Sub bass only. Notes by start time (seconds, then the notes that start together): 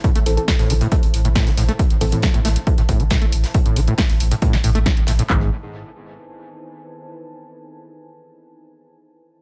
0.15 A1
0.26 A1
0.59 A1
0.70 A1
1.03 A1
1.14 A1
1.25 A1
1.47 A1
1.58 A1
1.90 A1
2.01 A1
2.34 A1
2.45 A1
2.78 A1
2.89 A1
3.00 A1
3.22 A1
3.33 A1
3.66 A1
3.76 A1
4.10 A1
4.20 A1
4.53 A1
4.64 A1
4.75 A1
4.97 A1
5.08 A1
5.30 G#1